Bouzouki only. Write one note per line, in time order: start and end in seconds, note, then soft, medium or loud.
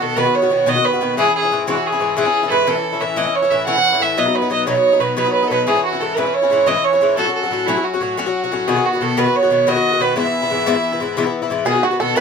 0.00 0.15 B2 soft
0.00 0.16 D#3 soft
0.00 0.16 B3 soft
0.00 0.17 F#4 soft
0.17 0.26 B2 medium
0.17 0.26 D#3 medium
0.17 0.26 B3 medium
0.17 0.24 F#4 medium
0.25 0.43 D#3 soft
0.25 0.42 B3 soft
0.25 0.41 F#4 soft
0.42 0.49 D#3 soft
0.42 0.50 B3 medium
0.42 0.51 F#4 medium
0.50 0.65 B2 soft
0.50 0.66 D#3 soft
0.50 0.67 B3 medium
0.50 0.67 F#4 medium
0.66 0.76 B2 medium
0.66 0.76 D#3 medium
0.66 0.75 B3 medium
0.66 0.74 F#4 medium
0.75 0.94 D#3 soft
0.75 0.93 B3 medium
0.75 0.92 F#4 medium
0.93 1.01 D#3 soft
0.93 1.01 B3 soft
0.93 1.01 F#4 medium
1.01 1.17 B2 medium
1.01 1.17 D#3 medium
1.01 1.18 B3 medium
1.01 1.18 F#4 medium
1.17 1.26 G#2 medium
1.17 1.26 E3 medium
1.17 1.26 C#4 medium
1.17 1.25 E4 medium
1.26 1.44 E3 soft
1.26 1.43 C#4 soft
1.26 1.42 E4 medium
1.43 1.51 E3 soft
1.43 1.52 C#4 soft
1.43 1.51 E4 soft
1.51 1.66 G#2 soft
1.51 1.67 E3 medium
1.51 1.67 C#4 medium
1.51 1.67 E4 medium
1.67 1.76 G#2 medium
1.67 1.76 E3 medium
1.67 1.75 C#4 medium
1.67 1.74 E4 medium
1.75 1.93 E3 soft
1.75 1.92 C#4 soft
1.75 1.91 E4 medium
1.92 1.99 E3 soft
1.92 2.00 C#4 soft
1.92 2.01 E4 medium
2.00 2.15 G#2 soft
2.00 2.16 E3 soft
2.00 2.17 C#4 medium
2.00 2.17 E4 medium
2.17 2.26 G#2 medium
2.17 2.26 E3 medium
2.17 2.25 C#4 loud
2.17 2.24 E4 medium
2.25 2.44 E3 soft
2.25 2.43 C#4 medium
2.25 2.42 E4 medium
2.43 2.50 E3 soft
2.43 2.51 C#4 soft
2.43 2.51 E4 medium
2.50 2.66 G#2 medium
2.50 2.66 E3 medium
2.50 2.66 C#4 medium
2.50 2.67 E4 medium
2.67 2.76 A2 medium
2.67 2.76 E3 medium
2.67 2.75 C#4 medium
2.67 2.74 E4 medium
2.75 2.94 E3 soft
2.75 2.92 C#4 soft
2.75 2.91 E4 soft
2.92 3.00 E3 soft
2.92 3.01 C#4 soft
2.92 3.01 E4 soft
3.00 3.15 A2 medium
3.00 3.15 E3 medium
3.00 3.16 C#4 soft
3.00 3.17 E4 medium
3.16 3.26 A2 medium
3.16 3.26 E3 medium
3.16 3.26 C#4 medium
3.16 3.24 E4 loud
3.26 3.43 E3 soft
3.26 3.43 C#4 soft
3.26 3.41 E4 medium
3.42 3.51 E3 soft
3.42 3.51 C#4 medium
3.42 3.51 E4 medium
3.51 3.66 A2 soft
3.51 3.66 E3 medium
3.51 3.66 C#4 medium
3.51 3.67 E4 medium
3.67 3.76 A2 medium
3.67 3.76 E3 medium
3.67 3.76 C#4 medium
3.67 3.74 E4 medium
3.76 3.93 E3 soft
3.76 3.92 C#4 soft
3.76 3.91 E4 medium
3.92 4.00 E3 soft
3.92 4.01 C#4 medium
3.92 4.01 E4 medium
4.00 4.17 A2 medium
4.00 4.17 E3 medium
4.00 4.18 C#4 medium
4.00 4.18 E4 medium
4.17 4.26 B2 medium
4.17 4.27 F#3 medium
4.17 4.25 B3 medium
4.17 4.24 D#4 medium
4.25 4.42 F#3 soft
4.25 4.41 B3 soft
4.25 4.41 D#4 soft
4.42 4.49 F#3 soft
4.42 4.50 B3 soft
4.42 4.50 D#4 medium
4.50 4.66 B2 medium
4.50 4.66 F#3 medium
4.50 4.66 B3 medium
4.50 4.67 D#4 soft
4.67 4.76 B2 medium
4.67 4.76 F#3 medium
4.67 4.75 B3 medium
4.67 4.74 D#4 medium
4.75 4.93 F#3 soft
4.75 4.92 B3 soft
4.75 4.91 D#4 soft
4.92 5.00 F#3 soft
4.92 5.00 B3 soft
4.92 5.01 D#4 medium
5.00 5.15 B2 soft
5.00 5.16 F#3 soft
5.00 5.17 B3 medium
5.00 5.17 D#4 soft
5.17 5.26 B2 medium
5.17 5.26 F#3 medium
5.17 5.25 B3 medium
5.17 5.24 D#4 medium
5.25 5.43 F#3 soft
5.25 5.42 B3 soft
5.25 5.41 D#4 soft
5.42 5.50 F#3 soft
5.42 5.51 B3 soft
5.42 5.51 D#4 medium
5.51 5.66 B2 medium
5.51 5.67 F#3 medium
5.51 5.67 B3 medium
5.51 5.68 D#4 medium
5.67 5.76 G#2 medium
5.67 5.76 E3 medium
5.67 5.76 C#4 medium
5.67 5.74 E4 medium
5.76 5.94 E3 soft
5.76 5.93 C#4 soft
5.76 5.91 E4 soft
5.93 6.00 E3 soft
5.93 6.01 C#4 soft
5.93 6.01 E4 medium
6.01 6.16 G#2 soft
6.01 6.16 E3 soft
6.01 6.17 C#4 medium
6.01 6.17 E4 medium
6.17 6.26 G#2 medium
6.17 6.26 E3 medium
6.17 6.25 C#4 medium
6.17 6.24 E4 medium
6.25 6.43 E3 soft
6.25 6.42 C#4 soft
6.25 6.41 E4 soft
6.42 6.50 E3 soft
6.42 6.50 C#4 soft
6.42 6.51 E4 soft
6.50 6.65 G#2 soft
6.50 6.66 E3 medium
6.50 6.66 C#4 medium
6.50 6.67 E4 medium
6.67 6.76 G#2 medium
6.67 6.76 E3 medium
6.67 6.75 C#4 medium
6.67 6.74 E4 medium
6.76 6.94 E3 soft
6.76 6.93 C#4 soft
6.76 6.92 E4 medium
6.93 7.01 E3 soft
6.93 7.01 C#4 soft
6.93 7.01 E4 medium
7.01 7.17 G#2 medium
7.01 7.17 E3 medium
7.01 7.17 C#4 medium
7.01 7.18 E4 medium
7.17 7.26 A2 medium
7.17 7.27 F#3 medium
7.17 7.26 C#4 medium
7.17 7.25 F#4 medium
7.26 7.44 F#3 soft
7.26 7.43 C#4 soft
7.26 7.42 F#4 soft
7.43 7.51 F#3 soft
7.43 7.51 C#4 soft
7.43 7.51 F#4 soft
7.51 7.66 A2 soft
7.51 7.67 F#3 soft
7.51 7.67 C#4 medium
7.51 7.68 F#4 medium
7.68 7.76 A2 medium
7.68 7.77 F#3 medium
7.68 7.77 C#4 medium
7.68 7.76 F#4 medium
7.77 7.95 F#3 soft
7.77 7.93 C#4 soft
7.77 7.92 F#4 medium
7.94 8.00 F#3 soft
7.94 8.01 C#4 soft
7.94 8.02 F#4 medium
8.01 8.16 A2 soft
8.01 8.17 F#3 medium
8.01 8.17 C#4 medium
8.01 8.18 F#4 medium
8.17 8.26 A2 medium
8.17 8.27 F#3 medium
8.17 8.26 C#4 medium
8.17 8.25 F#4 medium
8.26 8.44 F#3 soft
8.26 8.43 C#4 soft
8.26 8.43 F#4 medium
8.44 8.51 F#3 soft
8.44 8.52 C#4 soft
8.44 8.52 F#4 medium
8.52 8.67 A2 medium
8.52 8.68 F#3 medium
8.52 8.68 C#4 medium
8.52 8.68 F#4 medium
8.68 8.76 B2 medium
8.68 8.77 D#3 medium
8.68 8.76 B3 medium
8.68 8.75 F#4 medium
8.76 8.94 D#3 soft
8.76 8.93 B3 soft
8.76 8.92 F#4 medium
8.93 9.01 D#3 soft
8.93 9.01 B3 soft
8.93 9.01 F#4 soft
9.01 9.16 B2 medium
9.01 9.16 D#3 soft
9.01 9.17 B3 medium
9.01 9.17 F#4 medium
9.17 9.26 B2 medium
9.17 9.26 D#3 medium
9.17 9.26 B3 medium
9.17 9.25 F#4 medium
9.26 9.43 D#3 soft
9.26 9.43 B3 soft
9.26 9.41 F#4 soft
9.42 9.50 D#3 soft
9.42 9.51 B3 soft
9.42 9.51 F#4 medium
9.50 9.66 B2 medium
9.50 9.67 D#3 medium
9.50 9.67 B3 medium
9.50 9.67 F#4 medium
9.67 9.76 B2 medium
9.67 9.76 D#3 medium
9.67 9.76 B3 medium
9.67 9.75 F#4 medium
9.76 9.93 D#3 soft
9.76 9.92 B3 medium
9.76 9.91 F#4 medium
9.92 9.99 D#3 soft
9.92 10.00 B3 soft
9.92 10.01 F#4 soft
10.00 10.15 B2 medium
10.00 10.16 D#3 medium
10.00 10.16 B3 medium
10.00 10.17 F#4 medium
10.16 10.25 G#2 medium
10.16 10.25 E3 medium
10.16 10.25 B3 medium
10.16 10.24 E4 medium
10.25 10.42 E3 soft
10.25 10.42 B3 soft
10.25 10.41 E4 medium
10.42 10.50 E3 soft
10.42 10.50 B3 soft
10.42 10.51 E4 medium
10.50 10.65 G#2 soft
10.50 10.66 E3 medium
10.50 10.66 B3 medium
10.50 10.67 E4 medium
10.66 10.75 G#2 loud
10.66 10.76 E3 medium
10.66 10.75 B3 loud
10.66 10.74 E4 loud
10.75 10.93 E3 soft
10.75 10.92 B3 soft
10.75 10.91 E4 medium
10.92 10.99 E3 soft
10.92 11.00 B3 medium
10.92 11.00 E4 medium
11.00 11.16 G#2 medium
11.00 11.16 E3 medium
11.00 11.17 B3 medium
11.00 11.17 E4 medium
11.17 11.26 G#2 medium
11.17 11.26 E3 medium
11.17 11.25 B3 loud
11.17 11.23 E4 medium
11.24 11.43 E3 medium
11.24 11.42 B3 medium
11.24 11.41 E4 medium
11.42 11.49 E3 soft
11.42 11.50 B3 medium
11.42 11.50 E4 medium
11.50 11.65 G#2 medium
11.50 11.66 E3 medium
11.50 11.65 B3 medium
11.50 11.66 E4 medium
11.65 11.75 B2 medium
11.65 11.75 D#3 medium
11.65 11.75 B3 medium
11.65 11.74 F#4 medium
11.75 11.92 D#3 soft
11.75 11.91 B3 soft
11.75 11.90 F#4 soft
11.91 12.00 D#3 soft
11.91 12.00 B3 soft
11.91 12.00 F#4 soft
12.00 12.15 B2 soft
12.00 12.15 D#3 medium
12.00 12.16 B3 medium
12.00 12.16 F#4 medium
12.16 12.21 B2 medium
12.16 12.21 D#3 medium
12.16 12.21 B3 medium
12.16 12.21 F#4 loud